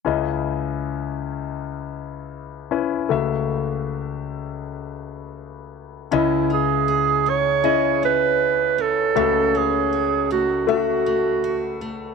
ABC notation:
X:1
M:4/4
L:1/8
Q:1/4=79
K:C#m
V:1 name="Clarinet"
z8 | z8 | E G2 c2 B2 A- | A G2 F F3 z |]
V:2 name="Grand piano"
[CEd]6- [CEd] [CEB] | [A,Fe]8 | [CEd]4 [CEd]4 | [A,Fe]4 [A,Fe]4 |]
V:3 name="Grand piano" clef=bass
[C,,C,]8 | [C,,C,]8 | [C,,C,]8 | [C,,C,]8 |]
V:4 name="Steel-string acoustic guitar"
z8 | z8 | C, D G C G C2 C | C, C F A, F A, F A, |]